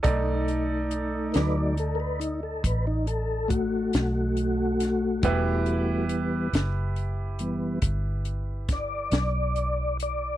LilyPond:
<<
  \new Staff \with { instrumentName = "Upright piano" } { \time 12/8 \key e \minor \tempo 4. = 46 <dis' a' d''>1. | <e' g' b'>1. | }
  \new Staff \with { instrumentName = "Tonewheel organ" } { \time 12/8 \key e \minor r4. <ais' b'>16 dis'16 a'16 <ais' b'>16 dis'16 a'16 b'16 dis'16 a'8 <a fis'>2~ | <a fis'>4 r2. d''4. d''8 | }
  \new Staff \with { instrumentName = "Tonewheel organ" } { \time 12/8 \key e \minor <a dis'>4. <fis a d''>8 r1 | <e g b>4. r4 <e g b>8 r2. | }
  \new Staff \with { instrumentName = "Fingered electric bass" } { \clef bass \time 12/8 \key e \minor b,,4. d,4. a,,4. b,,4. | e,,4. fis,,4. g,,4. b,,4. | }
  \new DrumStaff \with { instrumentName = "Drums" } \drummode { \time 12/8 <hh bd>8 hh8 hh8 <hh sn>8 hh8 hh8 <hh bd>8 hh8 <hh bd>8 <hh sn>8 hh8 <hh sn>8 | <hh bd>8 hh8 hh8 <hh sn>8 hh8 hh8 <hh bd>8 hh8 <hh bd sn>8 <hh sn>8 hh8 hh8 | }
>>